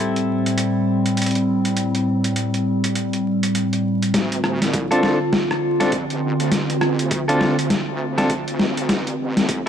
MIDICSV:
0, 0, Header, 1, 5, 480
1, 0, Start_track
1, 0, Key_signature, -1, "minor"
1, 0, Tempo, 594059
1, 1426, Time_signature, 4, 2, 24, 8
1, 7825, End_track
2, 0, Start_track
2, 0, Title_t, "Clean electric guitar"
2, 0, Program_c, 0, 27
2, 0, Note_on_c, 0, 60, 67
2, 0, Note_on_c, 0, 64, 62
2, 0, Note_on_c, 0, 67, 65
2, 0, Note_on_c, 0, 69, 72
2, 3322, Note_off_c, 0, 60, 0
2, 3322, Note_off_c, 0, 64, 0
2, 3322, Note_off_c, 0, 67, 0
2, 3322, Note_off_c, 0, 69, 0
2, 3966, Note_on_c, 0, 69, 83
2, 3970, Note_on_c, 0, 65, 68
2, 3973, Note_on_c, 0, 62, 67
2, 3977, Note_on_c, 0, 60, 66
2, 4188, Note_off_c, 0, 60, 0
2, 4188, Note_off_c, 0, 62, 0
2, 4188, Note_off_c, 0, 65, 0
2, 4188, Note_off_c, 0, 69, 0
2, 4686, Note_on_c, 0, 69, 92
2, 4689, Note_on_c, 0, 65, 73
2, 4694, Note_on_c, 0, 62, 71
2, 4697, Note_on_c, 0, 60, 71
2, 4807, Note_off_c, 0, 60, 0
2, 4807, Note_off_c, 0, 62, 0
2, 4807, Note_off_c, 0, 65, 0
2, 4807, Note_off_c, 0, 69, 0
2, 5883, Note_on_c, 0, 69, 89
2, 5889, Note_on_c, 0, 65, 73
2, 5892, Note_on_c, 0, 62, 65
2, 5897, Note_on_c, 0, 60, 69
2, 6107, Note_off_c, 0, 62, 0
2, 6107, Note_off_c, 0, 65, 0
2, 6107, Note_off_c, 0, 69, 0
2, 6108, Note_off_c, 0, 60, 0
2, 6606, Note_on_c, 0, 69, 105
2, 6610, Note_on_c, 0, 65, 70
2, 6613, Note_on_c, 0, 62, 64
2, 6616, Note_on_c, 0, 60, 77
2, 6727, Note_off_c, 0, 60, 0
2, 6727, Note_off_c, 0, 62, 0
2, 6727, Note_off_c, 0, 65, 0
2, 6727, Note_off_c, 0, 69, 0
2, 7825, End_track
3, 0, Start_track
3, 0, Title_t, "Ambient pad"
3, 0, Program_c, 1, 92
3, 0, Note_on_c, 1, 45, 79
3, 0, Note_on_c, 1, 55, 74
3, 0, Note_on_c, 1, 60, 88
3, 3315, Note_off_c, 1, 45, 0
3, 3315, Note_off_c, 1, 55, 0
3, 3316, Note_off_c, 1, 60, 0
3, 3352, Note_on_c, 1, 50, 82
3, 3352, Note_on_c, 1, 65, 90
3, 3355, Note_on_c, 1, 60, 71
3, 7157, Note_off_c, 1, 50, 0
3, 7157, Note_off_c, 1, 65, 0
3, 7186, Note_on_c, 1, 57, 81
3, 7186, Note_on_c, 1, 67, 92
3, 7825, Note_off_c, 1, 57, 0
3, 7825, Note_off_c, 1, 60, 0
3, 7825, Note_off_c, 1, 67, 0
3, 7825, End_track
4, 0, Start_track
4, 0, Title_t, "Wobble bass"
4, 0, Program_c, 2, 39
4, 3346, Note_on_c, 2, 38, 89
4, 3709, Note_off_c, 2, 38, 0
4, 3732, Note_on_c, 2, 36, 97
4, 4189, Note_off_c, 2, 36, 0
4, 4694, Note_on_c, 2, 41, 96
4, 4772, Note_off_c, 2, 41, 0
4, 4786, Note_on_c, 2, 41, 91
4, 4909, Note_off_c, 2, 41, 0
4, 4933, Note_on_c, 2, 33, 99
4, 5012, Note_off_c, 2, 33, 0
4, 5027, Note_on_c, 2, 33, 96
4, 5149, Note_off_c, 2, 33, 0
4, 5173, Note_on_c, 2, 38, 92
4, 5252, Note_off_c, 2, 38, 0
4, 5265, Note_on_c, 2, 33, 92
4, 5628, Note_off_c, 2, 33, 0
4, 5651, Note_on_c, 2, 38, 92
4, 6348, Note_off_c, 2, 38, 0
4, 6370, Note_on_c, 2, 38, 98
4, 7068, Note_off_c, 2, 38, 0
4, 7092, Note_on_c, 2, 38, 96
4, 7171, Note_off_c, 2, 38, 0
4, 7185, Note_on_c, 2, 33, 89
4, 7548, Note_off_c, 2, 33, 0
4, 7569, Note_on_c, 2, 31, 93
4, 7825, Note_off_c, 2, 31, 0
4, 7825, End_track
5, 0, Start_track
5, 0, Title_t, "Drums"
5, 132, Note_on_c, 9, 42, 35
5, 213, Note_off_c, 9, 42, 0
5, 373, Note_on_c, 9, 42, 49
5, 454, Note_off_c, 9, 42, 0
5, 465, Note_on_c, 9, 42, 65
5, 546, Note_off_c, 9, 42, 0
5, 854, Note_on_c, 9, 42, 49
5, 935, Note_off_c, 9, 42, 0
5, 947, Note_on_c, 9, 42, 57
5, 983, Note_off_c, 9, 42, 0
5, 983, Note_on_c, 9, 42, 47
5, 1021, Note_off_c, 9, 42, 0
5, 1021, Note_on_c, 9, 42, 37
5, 1058, Note_off_c, 9, 42, 0
5, 1058, Note_on_c, 9, 42, 31
5, 1094, Note_off_c, 9, 42, 0
5, 1094, Note_on_c, 9, 42, 35
5, 1175, Note_off_c, 9, 42, 0
5, 1334, Note_on_c, 9, 42, 45
5, 1415, Note_off_c, 9, 42, 0
5, 1427, Note_on_c, 9, 42, 62
5, 1508, Note_off_c, 9, 42, 0
5, 1573, Note_on_c, 9, 42, 35
5, 1654, Note_off_c, 9, 42, 0
5, 1812, Note_on_c, 9, 42, 51
5, 1893, Note_off_c, 9, 42, 0
5, 1907, Note_on_c, 9, 42, 60
5, 1988, Note_off_c, 9, 42, 0
5, 2052, Note_on_c, 9, 42, 34
5, 2133, Note_off_c, 9, 42, 0
5, 2294, Note_on_c, 9, 42, 54
5, 2375, Note_off_c, 9, 42, 0
5, 2387, Note_on_c, 9, 42, 64
5, 2468, Note_off_c, 9, 42, 0
5, 2532, Note_on_c, 9, 42, 35
5, 2613, Note_off_c, 9, 42, 0
5, 2772, Note_on_c, 9, 42, 49
5, 2853, Note_off_c, 9, 42, 0
5, 2868, Note_on_c, 9, 42, 64
5, 2949, Note_off_c, 9, 42, 0
5, 3013, Note_on_c, 9, 42, 35
5, 3094, Note_off_c, 9, 42, 0
5, 3252, Note_on_c, 9, 42, 50
5, 3333, Note_off_c, 9, 42, 0
5, 3345, Note_on_c, 9, 38, 44
5, 3345, Note_on_c, 9, 42, 61
5, 3347, Note_on_c, 9, 36, 91
5, 3426, Note_off_c, 9, 38, 0
5, 3426, Note_off_c, 9, 42, 0
5, 3427, Note_off_c, 9, 36, 0
5, 3490, Note_on_c, 9, 42, 36
5, 3571, Note_off_c, 9, 42, 0
5, 3585, Note_on_c, 9, 37, 55
5, 3666, Note_off_c, 9, 37, 0
5, 3732, Note_on_c, 9, 38, 42
5, 3732, Note_on_c, 9, 42, 53
5, 3812, Note_off_c, 9, 38, 0
5, 3812, Note_off_c, 9, 42, 0
5, 3826, Note_on_c, 9, 36, 97
5, 3826, Note_on_c, 9, 42, 61
5, 3907, Note_off_c, 9, 36, 0
5, 3907, Note_off_c, 9, 42, 0
5, 3972, Note_on_c, 9, 42, 37
5, 4053, Note_off_c, 9, 42, 0
5, 4066, Note_on_c, 9, 38, 47
5, 4146, Note_off_c, 9, 38, 0
5, 4304, Note_on_c, 9, 38, 50
5, 4305, Note_on_c, 9, 36, 92
5, 4385, Note_off_c, 9, 38, 0
5, 4386, Note_off_c, 9, 36, 0
5, 4451, Note_on_c, 9, 37, 38
5, 4532, Note_off_c, 9, 37, 0
5, 4690, Note_on_c, 9, 38, 43
5, 4690, Note_on_c, 9, 42, 54
5, 4771, Note_off_c, 9, 38, 0
5, 4771, Note_off_c, 9, 42, 0
5, 4783, Note_on_c, 9, 42, 63
5, 4785, Note_on_c, 9, 36, 92
5, 4864, Note_off_c, 9, 42, 0
5, 4866, Note_off_c, 9, 36, 0
5, 4930, Note_on_c, 9, 42, 35
5, 5011, Note_off_c, 9, 42, 0
5, 5170, Note_on_c, 9, 42, 51
5, 5251, Note_off_c, 9, 42, 0
5, 5265, Note_on_c, 9, 36, 89
5, 5265, Note_on_c, 9, 38, 49
5, 5265, Note_on_c, 9, 42, 65
5, 5346, Note_off_c, 9, 36, 0
5, 5346, Note_off_c, 9, 38, 0
5, 5346, Note_off_c, 9, 42, 0
5, 5412, Note_on_c, 9, 42, 38
5, 5493, Note_off_c, 9, 42, 0
5, 5505, Note_on_c, 9, 37, 55
5, 5586, Note_off_c, 9, 37, 0
5, 5650, Note_on_c, 9, 42, 55
5, 5731, Note_off_c, 9, 42, 0
5, 5745, Note_on_c, 9, 42, 62
5, 5746, Note_on_c, 9, 36, 97
5, 5826, Note_off_c, 9, 36, 0
5, 5826, Note_off_c, 9, 42, 0
5, 5891, Note_on_c, 9, 42, 38
5, 5972, Note_off_c, 9, 42, 0
5, 5985, Note_on_c, 9, 38, 52
5, 6066, Note_off_c, 9, 38, 0
5, 6130, Note_on_c, 9, 42, 54
5, 6211, Note_off_c, 9, 42, 0
5, 6223, Note_on_c, 9, 38, 54
5, 6223, Note_on_c, 9, 42, 69
5, 6226, Note_on_c, 9, 36, 94
5, 6304, Note_off_c, 9, 38, 0
5, 6304, Note_off_c, 9, 42, 0
5, 6306, Note_off_c, 9, 36, 0
5, 6610, Note_on_c, 9, 38, 47
5, 6610, Note_on_c, 9, 42, 55
5, 6691, Note_off_c, 9, 38, 0
5, 6691, Note_off_c, 9, 42, 0
5, 6704, Note_on_c, 9, 42, 66
5, 6705, Note_on_c, 9, 36, 93
5, 6785, Note_off_c, 9, 42, 0
5, 6786, Note_off_c, 9, 36, 0
5, 6850, Note_on_c, 9, 42, 36
5, 6931, Note_off_c, 9, 42, 0
5, 6945, Note_on_c, 9, 38, 55
5, 7026, Note_off_c, 9, 38, 0
5, 7090, Note_on_c, 9, 42, 54
5, 7171, Note_off_c, 9, 42, 0
5, 7184, Note_on_c, 9, 38, 57
5, 7184, Note_on_c, 9, 42, 62
5, 7186, Note_on_c, 9, 36, 96
5, 7265, Note_off_c, 9, 38, 0
5, 7265, Note_off_c, 9, 42, 0
5, 7266, Note_off_c, 9, 36, 0
5, 7330, Note_on_c, 9, 42, 37
5, 7410, Note_off_c, 9, 42, 0
5, 7570, Note_on_c, 9, 38, 53
5, 7570, Note_on_c, 9, 42, 51
5, 7651, Note_off_c, 9, 38, 0
5, 7651, Note_off_c, 9, 42, 0
5, 7665, Note_on_c, 9, 42, 61
5, 7666, Note_on_c, 9, 36, 98
5, 7746, Note_off_c, 9, 36, 0
5, 7746, Note_off_c, 9, 42, 0
5, 7825, End_track
0, 0, End_of_file